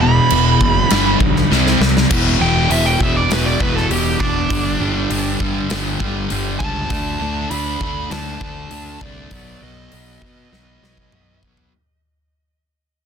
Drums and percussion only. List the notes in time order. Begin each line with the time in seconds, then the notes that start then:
0.30 crash
0.61 kick
0.90 snare, crash
1.20 kick
1.36 snare
1.52 snare
1.67 snare
1.82 snare
1.97 snare
2.11 kick, crash
2.71 open hi-hat
3.00 kick
3.31 snare, open hi-hat
3.60 kick
3.77 snare
3.91 open hi-hat
4.20 kick
4.50 kick, open hi-hat
5.11 open hi-hat
5.40 kick
5.70 snare, open hi-hat
6.00 kick
6.30 open hi-hat
6.60 kick
6.90 kick, open hi-hat
7.51 open hi-hat
7.81 kick
8.11 snare, open hi-hat
8.41 kick
8.71 open hi-hat
9.01 kick
9.31 kick, open hi-hat
9.92 open hi-hat
10.22 kick
10.53 snare
10.84 snare
10.97 kick
11.12 mid tom
11.43 kick
11.57 floor tom